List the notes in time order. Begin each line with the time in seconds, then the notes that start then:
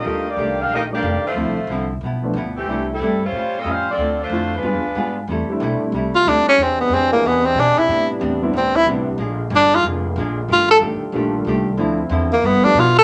Already playing: A#3 F4
0.00 G4 D#5
0.04 D#2 D#3 G3 A3 D4 F4 G4
0.28 A#3 F4 G4 D5
0.36 C2 D#3 A3 D4 G4
0.61 D4 G4 A#4 F5
0.70 A#1 D#3 A3 A#3 D4 F4
0.74 G4 D#5
0.91 G3 A3 A#3 D4 F4 G4 D5
1.02 F1 D#3 A3 D4 G4
1.23 A3 E4 F4 C5, muted upright bass stroke
1.35 D2 D3 F3 A3 C4 E4
1.45 C2
1.57 A1
1.67 C2 D3 F3
1.72 C4 E4
2.01 B1 G2 F3
2.05 B3 E4
2.23 F3 A3 B3 D4
2.34 D2 G2 F3 B3
2.38 E4
2.56 E3 A3 C4 G4
2.66 C2 C3 G3 A3 D4 E4
2.70 A3 E4
2.92 G3 C4 E4 A4
2.99 G2 C3 G3 A3
3.04 E4
3.24 G3 C#4 F4 C5
3.32 A2 G3
3.36 C#4 F4
3.58 C4 F4 A4 D#5
3.64 F2 A2 G3 C#4 F4
3.69 C#4 G4 C5 F5
3.89 C4 F4 A4 D5
3.97 D2 D3 A3
4.01 C4 F4
4.22 A3 D4 F4 C5
4.30 F2 D3 A3 C4 E4 F4
4.34 F4
4.55 G#3 D4 F4 B4
4.62 G2 G3 G#3 B3 D4 F4 G#4
4.73 F2
4.85 D2
4.95 G#2 G3 B3 F4 G#4
5.28 E2 C3 G3 A3 E4
5.32 E4
5.48 G3 A3 C4 D4 E4, muted upright bass stroke
5.60 B1 C3 G3 A3 E4
5.80 muted upright bass stroke
5.92 C2 C3 G3 A3 E4
6.15 F4
6.24 D2 C3 G3 A3 D4 E4
6.45 C#4, muted upright bass stroke
6.57 E2 E3 G#3 C4 D4
6.62 C4 G#4
6.80 B3
6.89 F2 E3
6.93 C4 D4 G#4
7.11 G#3 A#3 B3 C4 D4 E4
7.22 E2 E3
7.27 B3 C4 D4 G#4
7.46 C4
7.55 B2 E3 C4 D4 G#4
7.60 D4
7.77 E4, muted upright bass stroke
7.87 A2 G3 B3 C4 D4
8.20 E2 A2 G3 C4 D4
8.42 G3 B3 C4 D4 E4
8.53 D2 A2 G3 C4 D4
8.57 C4
8.76 E4
8.86 C2 A2 G3 B3 C4 D4 E4
9.18 A#1 A#2 D3 F3 G#3 A#3 D4 F4
9.50 G1 A#2 F3 G#3 D4
9.56 D4
9.75 F4
9.83 F1 A#2 F3 G#3 D4
10.16 A#1 A#2 F3 G#3 D4
10.48 G1 D3 D#3 G3 A3 D4 G4 A4
10.52 F4
10.71 A4
10.81 A1 D#3 A3 D4 G4
11.01 muted upright bass stroke
11.12 A#1 D#3 G3 A3 A#3 D4 F4 G4
11.45 C2 D#3 A3 D4 G4
11.77 D2 D3 F3 A3 C4 D4 E4 F4
12.09 E2 D3 F3 C4 E4
12.33 A#3
12.41 G2 F3 A3 B3 E4 F4
12.45 B3 E4
12.64 F3 A3 B3 D4 G4
12.74 G2 B2 F3
12.78 B3 E4 F4
12.99 A4